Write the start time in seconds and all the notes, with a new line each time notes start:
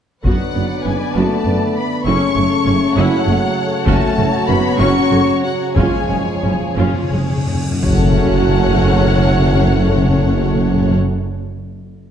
0.24 F#1 F#2 D3 F#3 B3 F#4 B4 D5 F#5, taiko
0.54 F#1 F#2 B3
0.84 F#1 F#2 G#3 B3 D4 G#5
1.14 F#1 F#2 A3 B3 F#4 A5
1.45 F#1 F#2 B3
1.75 B3 B5
2.06 F#1 F#2 C#3 A3 C#4 E4 A4 C#5 C#6
2.36 F#1 F#2 A3 C#4
2.66 F#1 F#2 C#4
2.96 F#1 F#2 F#3 C#4 E4 F#5
3.26 F#1 F#2 A3 C#4
3.86 F#1 F#2 F#3 A3 C#4 F#4 A5, taiko
4.18 F#1 F#2 A3 C#4
4.47 F#1 F#2 B3 C#4 B5
4.78 F#1 F#2 C#4 F#4 C#6
5.11 F#1 F#2 A3 C#4
5.43 F#3 F#5
5.75 F#1 F#2 C#3 F3 G#3 C#4 F4 G#4 C#5 G#5, taiko, cymbal swell
5.93 F#2
6.02 F#2
6.08 F#1 F#2 G#3 C#4
6.17 F#2
6.26 F#2
6.34 F#2
6.42 F#1 F#2 C#4
6.51 F#2
6.60 F#2
6.69 F#2
6.76 F#1 F#2 C#4 F4
6.85 F#2
6.93 F#2
7.02 F#2
7.11 F#1 F#2 G#3 C#4
7.21 F#2
7.29 F#2
7.37 F#2
7.47 F#2
7.55 F#2
7.64 F#2
7.71 F#2
7.82 F#1 F#2 C#3 F#3 A3 C#4 F#4 A4 C#5 F#5, impact
7.90 F#2
7.97 F#2
8.03 F#2
8.10 F#2
8.17 F#2
8.25 F#2
8.32 F#2
8.40 F#2
8.47 F#2
8.54 F#2
8.61 F#2
8.69 F#2
8.76 F#2
8.84 F#2
8.91 F#2
8.98 F#2
9.05 F#2
9.11 F#2
9.18 F#2
9.24 F#2
9.32 F#2
9.39 F#2
9.46 F#2
9.53 F#2
9.60 F#2
9.67 F#2
9.74 F#2
9.81 F#2
9.89 F#2
9.96 F#2
10.03 F#2
10.09 F#2
10.16 F#2
10.23 F#2
10.30 F#2
10.38 F#2
10.45 F#2
10.53 F#2
10.60 F#2
10.67 F#2
10.74 F#2
10.81 F#2
10.88 F#2